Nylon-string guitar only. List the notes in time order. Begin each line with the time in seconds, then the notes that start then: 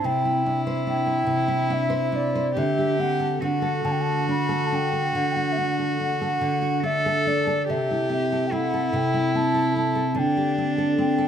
Already playing: C4 E4 C5
0.04 C3
0.25 E4
0.46 D4
0.67 C5
0.87 D4
1.07 C5
1.26 C3
1.48 E4
1.70 D4
1.90 C5
2.12 D4
2.35 C5
2.57 D3
2.79 G4
2.99 C4
3.20 A4
3.42 D3
3.62 A4
3.85 D3
4.29 D4
4.49 A4
4.72 D4
4.93 A4
5.15 D3
5.36 F#4
5.58 D4
5.79 A4
6.00 D4
6.21 A4
6.41 D3
6.62 F#4
6.83 D4
7.06 A4
7.27 D4
7.47 A4
7.70 C3
7.91 E4
8.10 C4
8.32 A4
8.52 C4
8.73 A4
8.93 C3
9.14 E4
9.35 C4
9.54 A4
9.76 C4
9.95 A4
10.15 D3
10.37 G4
10.58 C4
10.78 A4
10.98 C4
11.19 A4